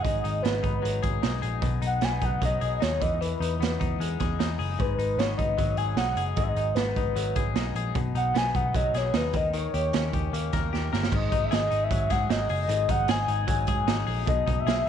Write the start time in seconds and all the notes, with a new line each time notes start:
Already playing: F#3 B3 D#4 G#4
0.02 G#1 G#2 D#5, kick, closed hi-hat
0.24 G#1 D#4, closed hi-hat
0.42 G#1 B3 B4, snare, closed hi-hat
0.63 G#1 D#4, kick, closed hi-hat
0.82 G#1 F#3, closed hi-hat
1.03 G#1 G#4, kick, closed hi-hat
1.23 B1 D#4, snare, closed hi-hat
1.42 A#1 G#4, closed hi-hat
1.62 B1 B2, kick, closed hi-hat
1.82 B1 D#4, closed hi-hat
1.86 F#5
2.01 B1 B3 G#5, snare, closed hi-hat
2.21 B1 D#4 F#5, kick, closed hi-hat
2.41 B1 F#3 D#5, kick, closed hi-hat
2.61 B1 G#4 D#5, closed hi-hat
2.80 D#2 D#4 C#5, snare, closed hi-hat
3.01 E2 E3 D#5, kick, closed hi-hat
3.21 E3 B4, closed hi-hat
3.40 E2 D#4, closed hi-hat
3.60 E2 B3, snare, closed hi-hat
3.80 E2 D#4, kick, closed hi-hat
3.99 E2 G#3, closed hi-hat
4.20 E2 G#4, kick, snare, closed hi-hat
4.39 E2 D#4, snare, closed hi-hat
4.59 F#1 G#4, open hi-hat
4.79 G#1 G#2 B4, kick, closed hi-hat
4.99 G#1 D#4, closed hi-hat
5.17 G#1 B3 C#5, snare, closed hi-hat
5.38 G#1 D#4 D#5, kick, closed hi-hat
5.58 G#1 F#3, kick, closed hi-hat
5.77 G#1 G#4 G#5, closed hi-hat
5.96 B1 D#4 F#5, snare, closed hi-hat
6.15 F#1 G#4 F#5, closed hi-hat
6.36 G#1 G#2 D#5, kick, closed hi-hat
6.43 E5
6.49 D#5
6.55 G#1 D#4, closed hi-hat
6.75 G#1 B3 B4, snare, closed hi-hat
6.96 G#1 D#4, kick, closed hi-hat
7.16 G#1 F#3, closed hi-hat
7.36 G#1 G#4, kick, closed hi-hat
7.54 B1 D#4, snare, closed hi-hat
7.74 A#1 G#4, closed hi-hat
7.95 B1 B2, kick, closed hi-hat
8.15 B1 D#4 F#5, closed hi-hat
8.34 B1 B3 G#5, snare, closed hi-hat
8.55 B1 D#4 F#5, kick, closed hi-hat
8.74 B1 F#3 D#5, kick, closed hi-hat
8.94 B1 G#4 C#5, snare, closed hi-hat
9.14 D#2 D#4 B4, snare, closed hi-hat
9.33 D#2 D#3 D#5, kick, closed hi-hat
9.53 D#3 C#5, closed hi-hat
9.74 D#2 G4, closed hi-hat
9.93 D#2 C#4, snare, closed hi-hat
10.13 D#2 G4, kick, closed hi-hat
10.33 D#2 A#3, closed hi-hat
10.53 D#2 A#4, kick, snare, closed hi-hat
10.73 D#2 G4, snare
10.93 G1 A#4, snare
11.03 snare
11.12 G#1 G#2 D#5, kick, crash
11.32 G#1 D#4, kick, closed hi-hat
11.45 E5
11.51 G#1 G#4 D#5, snare, closed hi-hat
11.71 G#1 D#4, closed hi-hat
11.84 E5
11.91 G#1 F#3, kick, closed hi-hat
12.10 G#2 G#4 F#5, kick, snare, closed hi-hat
12.30 G#1 D#4 D#5, snare, closed hi-hat
12.49 F#1 G#4, open hi-hat
12.62 D#5
12.68 G#1 G#2, closed hi-hat
12.89 G#1 D#4 F#5, kick, closed hi-hat
13.08 G#1 G#4 G#5, snare, closed hi-hat
13.28 G#1 D#4, closed hi-hat
13.47 G#1 F#3, kick, closed hi-hat
13.67 G#2 G#4, kick, closed hi-hat
13.86 G#1 D#4, snare, closed hi-hat
14.07 A#1 G#4, open hi-hat
14.26 B1 B2 D#5, kick, closed hi-hat
14.47 B1 D#4, kick, closed hi-hat
14.60 E5
14.66 B1 G#4, snare, closed hi-hat